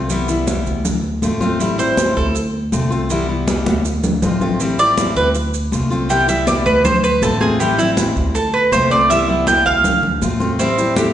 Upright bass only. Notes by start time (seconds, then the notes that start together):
Already playing: C2
0.66 D2
1.23 A1
2.17 D2
2.73 C2
3.67 D2
4.23 A1
5.16 D2
5.72 C2
6.66 D2
7.22 A1
8.16 D2
8.72 C2
9.66 D2
10.22 A1